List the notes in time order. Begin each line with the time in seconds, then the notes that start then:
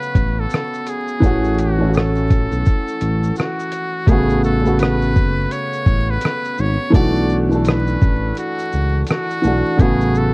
Already playing: C#3 A3 B3 F#4 B4
0.02 shaker
0.15 A1, kick, closed hi-hat, shaker
0.40 A4
0.50 cross-stick, shaker
0.74 shaker
0.87 G#4, closed hi-hat, shaker
1.08 shaker
1.20 A1 E3 A3 C#4, kick, shaker
1.26 F#4
1.44 shaker
1.58 F#4, closed hi-hat, shaker
1.78 E3 A3 C#4
1.83 E4
1.90 F#4
1.94 A4, cross-stick, shaker
2.16 shaker
2.31 kick, closed hi-hat, shaker
2.52 B1, shaker
2.66 kick, shaker
2.88 shaker
3.01 A1, closed hi-hat, shaker
3.23 shaker
3.36 F#4, cross-stick, shaker
3.60 shaker
3.72 closed hi-hat, shaker
4.07 A1 C#3 A3 B3 G#4, kick, closed hi-hat, shaker
4.12 F#4
4.30 shaker
4.44 A4, shaker
4.62 C#3 A3 B3, shaker
4.67 F#4
4.79 B4, cross-stick, closed hi-hat, shaker
5.02 shaker
5.16 F#1, kick, shaker
5.51 C#5, closed hi-hat, shaker
5.73 shaker
5.86 A1, kick, shaker
6.10 B4
6.21 cross-stick, closed hi-hat, shaker
6.45 shaker
6.58 G#1 C#5, shaker
6.90 B1 E3 A3 D4, kick, closed hi-hat, shaker
6.95 F#4 D5
7.15 shaker
7.30 shaker
7.49 E3 A3 D4, shaker
7.55 A4
7.65 B4, cross-stick, closed hi-hat, shaker
7.87 shaker
8.02 A1, kick, shaker
8.37 F#4, closed hi-hat, shaker
8.59 shaker
8.72 C#2, shaker
9.07 F#4, cross-stick, closed hi-hat, shaker
9.31 shaker
9.42 B1 E3 A3, shaker
9.46 D4 F#4
9.77 A1 C#3 A3 B3 G#4, kick, closed hi-hat, shaker
9.82 F#4
10.01 shaker
10.15 A4, shaker